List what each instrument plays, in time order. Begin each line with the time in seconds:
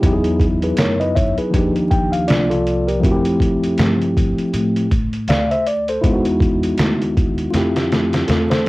0.02 upright bass E2, tine electric piano F#3 B3 D#4 E4, kick, closed hi-hat
0.06 tine electric piano G4
0.13 tine electric piano G#4
0.24 closed hi-hat
0.40 kick, closed hi-hat
0.62 tine electric piano G#4 B4, closed hi-hat
0.77 upright bass F#2, tine electric piano A#4 C#5, snare, closed hi-hat
1.00 tine electric piano B4 D#5, closed hi-hat
1.15 tine electric piano C#5 E5, kick, closed hi-hat
1.37 tine electric piano G#4 B4, muted upright bass stroke, closed hi-hat
1.50 upright bass D#2, tine electric piano F3 A#3 D4 D#4, kick, closed hi-hat
1.56 tine electric piano G4
1.76 closed hi-hat
1.91 tine electric piano G5, kick, closed hi-hat
2.12 tine electric piano F5, closed hi-hat
2.28 upright bass C2, tine electric piano D4 F4 D5, snare, closed hi-hat
2.50 tine electric piano F4 A4, closed hi-hat
2.67 closed hi-hat
2.87 tine electric piano G4 A#4, closed hi-hat
3.00 upright bass F2, tine electric piano F3 A3 C4, kick
3.04 tine electric piano E4 F#4, closed hi-hat
3.11 tine electric piano G4
3.25 closed hi-hat
3.40 kick, closed hi-hat
3.63 closed hi-hat
3.78 upright bass G2, snare, closed hi-hat
4.02 closed hi-hat
4.17 kick, closed hi-hat
4.37 muted upright bass stroke, closed hi-hat
4.53 upright bass A2, closed hi-hat
4.76 closed hi-hat
4.91 kick, closed hi-hat
5.13 closed hi-hat
5.27 upright bass D2, tine electric piano D5 F5, snare, closed hi-hat
5.51 tine electric piano C5 E5, closed hi-hat
5.66 tine electric piano D5, closed hi-hat
5.88 tine electric piano A4 C5, closed hi-hat
6.01 upright bass E2, tine electric piano G#3 B3 D#4 E4, kick, closed hi-hat
6.07 tine electric piano F4
6.13 tine electric piano F#4
6.25 closed hi-hat
6.40 kick, closed hi-hat
6.63 closed hi-hat
6.77 upright bass D#2, snare, closed hi-hat
7.01 closed hi-hat
7.17 kick, closed hi-hat
7.38 closed hi-hat
7.51 upright bass F2, tine electric piano A3 C4 F4, snare, closed hi-hat
7.55 tine electric piano E4 G4
7.76 snare, closed hi-hat
7.92 snare, closed hi-hat
8.13 snare, closed hi-hat
8.28 upright bass E2, tine electric piano F4 A4, snare, closed hi-hat
8.50 tine electric piano A4 C5, snare, closed hi-hat